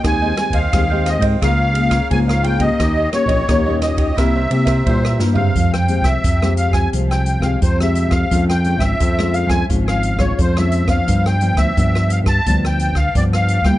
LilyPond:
<<
  \new Staff \with { instrumentName = "Accordion" } { \time 4/4 \key c \phrygian \tempo 4 = 87 aes''8. f''8. ees''8 f''4 aes''16 f''16 g''16 ees''16~ | ees''8 des''4 ees''8 e''4 c''16 e''8 f''16~ | \key f \minor f''16 g''8 e''8. f''16 aes''8 g''8 f''16 c''16 e''8 f''16~ | f''16 g''8 e''8. f''16 aes''8 f''8 des''16 c''16 e''8 f''16~ |
f''16 g''8 e''8. f''16 a''8 g''8 f''16 d''16 f''8 g''16 | }
  \new Staff \with { instrumentName = "Cavaquinho" } { \time 4/4 \key c \phrygian <aes' c'' ees'' g''>16 <c'' ees'' g''>16 r16 <c'' ees'' g''>16 <aes' c'' ees'' g''>16 <c'' ees'' g''>8 <c'' ees'' g''>16 <f' bes' des'' f''>16 <bes' des'' f''>16 r16 <bes' des'' f''>8 <bes' des'' f''>16 <f' bes' des'' f''>16 <bes' des'' f''>16 | <ees' g' des'' ees''>16 <g' des'' ees''>16 r16 <g' des'' ees''>16 <ees' g' des'' ees''>16 <g' des'' ees''>8 <g' des'' ees''>16 <e' bes' c'' e''>16 <bes' c'' e''>16 r16 <bes' c'' e''>8 <bes' c'' e''>16 <e' bes' c'' e''>16 <bes' c'' e''>16 | \key f \minor r1 | r1 |
r1 | }
  \new Staff \with { instrumentName = "Nylon-string guitar" } { \time 4/4 \key c \phrygian << { <aes c' g'>16 <aes c' g'>16 <aes c' g'>16 r16 <aes c' g'>16 <aes c' g'>8. <bes f' aes'>8 <bes f' aes'>16 r16 <bes f' aes'>16 r16 <bes f' aes'>16 <bes des' g'>16~ | <bes des' g'>16 r16 <bes des' g'>8 <bes des' g'>16 <bes des' g'>8. <bes e' g'>16 r16 <bes e' g'>8 <bes e' g'>8 <bes e' g'>16 <aes c' g'>16~ | \key f \minor <aes c' g'>8 <aes c' g'>8 r16 <aes c' g'>8. <aes c' g'>8 r16 <aes c' g'>8 <aes c' g'>8. | <aes des' f'>16 r16 <aes des' f'>8. <aes des' f'>8 <aes des' f'>16 <aes des' f'>8. <aes des' f'>8 <aes des' f'>8 <f b d'>16~ |
<f b d'>8 <f b d'>16 <f b d'>16 <f b d'>8. r16 <f b d'>8. r16 <f b d'>8. <g bes e'>16 | } \\ { ees4 ees4 des4 aes,4 | ees4 bes,4 c4 g,4 | f4 c4 f4 c4 | f4 f4 f4 f4 |
g,4 d4 g,4 d4 | } >> }
  \new Staff \with { instrumentName = "Analog synth bass" } { \clef bass \time 4/4 \key c \phrygian ees,8 r16 ees,16 ees,8. aes,16 des,4 des,4 | ees,8 r16 bes,,16 ees,8. ees,16 c,8 c8 bes,8 g,8 | \key f \minor f,8. c,16 f,8. f,16 c,8. c,16 f,8. f,16 | f,8. aes,,16 f,8. f,16 aes,,8. aes,,16 f,8. f,16 |
g,8. d,16 g,8. g,16 d,8. d,16 g,8. d,16 | }
  \new DrumStaff \with { instrumentName = "Drums" } \drummode { \time 4/4 <bd cymr ss>8 <cymr ss>16 <bd cymr>16 <bd cymr ss>8 <cymr ss>16 <bd cymr>16 <bd cymr ss>8 cymr16 <bd cymr ss>16 <bd cymr>16 ss16 cymr16 <bd cymr>16 | <bd cymr ss>8 <cymr ss>16 <bd cymr>16 <bd cymr ss>8 <cymr ss>16 <bd cymr>16 <bd cymr ss>8 cymr16 <bd cymr ss>16 <bd cymr>16 ss16 sn16 tomfh16 | <hh bd>16 ss16 hh16 <hh bd ss>16 <hh bd>16 ss16 hh16 <bd ss>16 <hh bd>16 ss16 hh16 <bd ss>16 <hh bd>16 ss16 hh16 <bd ss>16 | <hh bd>16 <hh ss>16 hh16 <hh bd ss>16 <hh bd>16 ss16 hh16 <hh bd ss>16 <hh bd>16 ss16 hh16 <bd ss>16 <hh bd>16 ss16 hh16 <hh bd ss>16 |
<hh bd>16 ss16 hh16 <hh bd ss>16 <hh bd>16 ss16 hh16 <bd ss>16 <hh bd>16 ss16 hh16 <bd ss>16 <hh bd>16 ss16 hh16 <bd ss>16 | }
>>